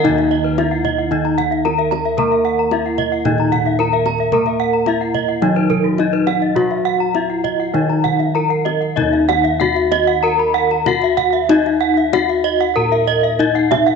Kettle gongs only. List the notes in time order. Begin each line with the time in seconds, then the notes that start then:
Already playing: D#3
0.04 D#4
0.09 D#2
0.58 E4
1.65 E4
2.18 A#4
2.73 E4
3.25 A#2
3.80 E4
4.33 A#4
4.87 E4
5.42 F#3
5.98 E4
6.56 F#4
7.14 E4
7.74 D#3
8.35 E4
8.97 D#4
9.02 D#2
9.60 E4
10.86 E4
11.49 D#4
12.12 E4
12.76 A#2
13.39 E4